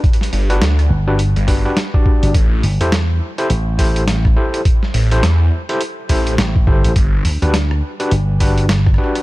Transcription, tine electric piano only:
X:1
M:4/4
L:1/16
Q:"Swing 16ths" 1/4=104
K:Ador
V:1 name="Tine electric piano"
z3 [DFGB] z3 [DFGB] z2 [DFGB] [DFGB] z [DFGd]3 | z3 [EGAc] z3 [EGAc] z2 [EGAc]2 z2 [EGAc]2 | z3 [EGAc] z3 [EGAc] z2 [EGAc]2 z2 [EGAc]2 | z3 [DFGB] z3 [DFGB] z2 [DFGB]2 z2 [DFGB]2 |]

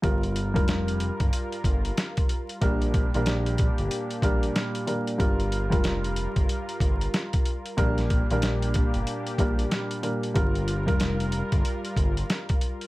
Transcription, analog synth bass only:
X:1
M:4/4
L:1/16
Q:"Swing 16ths" 1/4=93
K:Gm
V:1 name="Analog synth bass" clef=bass
G,,,3 F,,,4 G,,, z2 G,,,2 z4 | B,,,3 B,,,4 G,,, z2 B,,,2 z4 | G,,,3 F,,,4 G,,, z2 G,,,2 z4 | B,,,3 B,,,4 G,,, z2 B,,,2 z4 |
G,,,3 F,,,4 G,,, z2 G,,,2 z4 |]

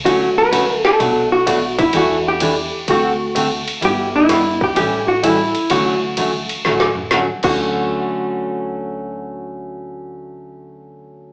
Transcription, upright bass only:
X:1
M:4/4
L:1/8
Q:"Swing" 1/4=127
K:D
V:1 name="Upright bass" clef=bass
D,,4 B,,,4 | E,,4 D,,4 | G,,,4 A,,,4 | D,,4 A,,,3 D,,- |
D,,8- | D,,8 |]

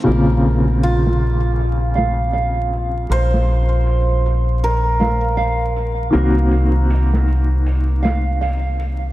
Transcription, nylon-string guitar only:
X:1
M:4/4
L:1/8
Q:"Swing 16ths" 1/4=79
K:Bbm
V:1 name="Nylon-string guitar"
B4 z f f z | B4 z f f z | B4 z f f z |]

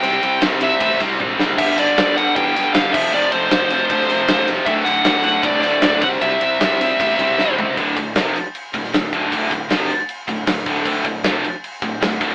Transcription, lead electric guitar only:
X:1
M:4/4
L:1/8
Q:1/4=155
K:Clyd
V:1 name="Lead electric guitar"
g2 z e2 z3 | e d2 f g2 =f e | d c6 z | e f2 f d d2 f |
e6- e z | z8 | z8 | z8 |]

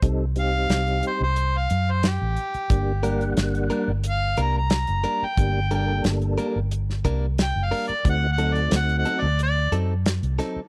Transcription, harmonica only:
X:1
M:4/4
L:1/16
Q:1/4=90
K:Gm
V:1 name="Harmonica"
z2 f4 c c2 f2 c G4- | G4 z4 f2 b b4 g- | g2 g2 z8 (3g2 f2 d2 | (3^f2 f2 d2 (3f2 f2 d2 d2 z6 |]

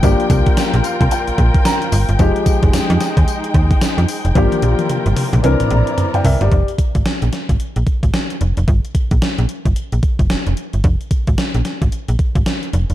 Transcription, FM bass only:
X:1
M:4/4
L:1/16
Q:"Swing 16ths" 1/4=111
K:Fdor
V:1 name="FM bass" clef=bass
G,,, z C,, z2 B,,, z C,, z B,,, B,,, z3 G,,, G,,, | F,,, z2 F,,, F,, F,, z E,, z2 E,,2 z F,, z F,,, | G,,, z B,,, z2 G,,, z B,,, C,, z B,,, z3 C,, G,,, | F,,, z2 A,,, z B,,, z A,,, z B,,, z A,,, z2 F,,, F,,, |
G,,, z2 B,,, z B,,, z G,,, z B,,, z G,,, F,,, F,,, z G,,, | F,,, z2 A,,, z B,,, z A,,, z B,,, z A,,, z2 F,,, F,,, |]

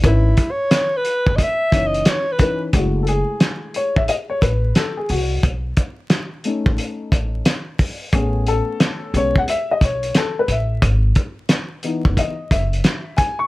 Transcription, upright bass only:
X:1
M:4/4
L:1/16
Q:"Swing 16ths" 1/4=89
K:F#dor
V:1 name="Upright bass" clef=bass
G,,,2 z4 z F,,, z2 F,,,2 z4 | F,,,3 z4 A,,, z2 A,,,2 z2 ^B,,,2 | B,,,2 z4 z A,,, z2 A,,,2 z4 | A,,,3 z3 B,,,2 z2 B,,,2 z2 A,,,2 |
G,,,2 z4 z F,,, z2 F,,,2 z4 |]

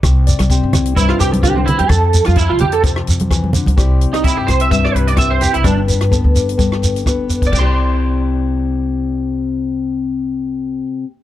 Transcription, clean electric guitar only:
X:1
M:4/4
L:1/16
Q:"Swing 16ths" 1/4=128
K:C
V:1 name="Clean electric guitar"
z8 E F G z G C E G | A3 F E F G A z8 | z3 _E =E G c e e d B d e c G E | D2 z12 z2 |
[dc']16- | [dc']16 |]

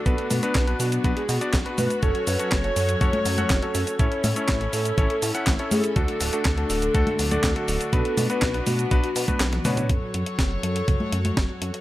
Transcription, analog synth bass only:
X:1
M:4/4
L:1/8
Q:1/4=122
K:F#m
V:1 name="Analog synth bass" clef=bass
B,,, B,, B,,, B,, B,,, B,, B,,, B,, | F,,, F,, F,,, F,, F,,, F,, F,,, F,, | A,,, A,, A,,, A,, A,,, A,, A,,, A,, | D,, D,,, D,, D,,, D,, D,,, D,, D,,, |
B,,, B,, B,,, B,, B,,, B,, B,,, B,, | F,,, F,, F,,, F,, F,,, F,, F,,, F,, |]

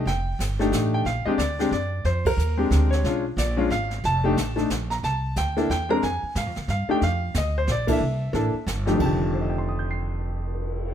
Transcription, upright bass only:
X:1
M:3/4
L:1/8
Q:"Swing" 1/4=181
K:Fmix
V:1 name="Upright bass" clef=bass
F,,,2 G,,,2 A,,,2 | B,,, z D,,2 _G,,2 | F,,2 E,,2 D,,2 | =B,,,2 _B,,,2 ^G,,,2 |
F,,,2 A,,,2 B,,,2 | C,,2 D,,2 =E,,2 | F,, z (3_A,, F,, D,, G,, z | F,,2 D,,2 B,,,2 |
C,,2 A,,, z G,,,2 | F,,,6- | F,,,6 |]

